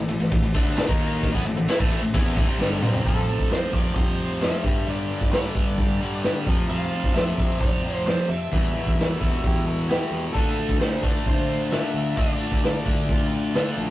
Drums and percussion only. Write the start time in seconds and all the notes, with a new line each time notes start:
0.09 ride
0.22 snare
0.32 kick, ride
0.54 kick, ride
0.77 snare, ride
0.89 kick
1.00 ride
1.23 kick, ride
1.35 kick
1.46 ride
1.68 snare, ride
1.80 kick
1.92 ride
2.14 kick, ride
2.37 kick, ride
2.61 snare
2.82 mid tom
2.93 floor tom
3.05 kick, open hi-hat
3.39 kick
3.51 snare, open hi-hat
3.73 kick, snare
3.96 kick, open hi-hat
4.41 snare, open hi-hat
4.64 kick
4.87 open hi-hat
5.21 kick
5.32 snare, open hi-hat
5.55 kick
5.78 kick, open hi-hat
6.23 snare, open hi-hat
6.47 kick
6.69 open hi-hat
7.04 kick
7.15 snare, open hi-hat
7.38 kick
7.60 kick, open hi-hat
8.07 snare, open hi-hat
8.53 kick, open hi-hat
8.87 kick
8.99 snare, open hi-hat
9.21 kick
9.44 kick, open hi-hat
9.90 snare, open hi-hat
10.35 kick, open hi-hat
10.69 kick
10.79 snare, open hi-hat
11.03 kick, snare
11.26 kick, open hi-hat
11.71 snare, open hi-hat
12.17 kick, open hi-hat
12.52 kick
12.63 snare, open hi-hat
12.86 kick
13.09 kick, open hi-hat
13.54 snare, open hi-hat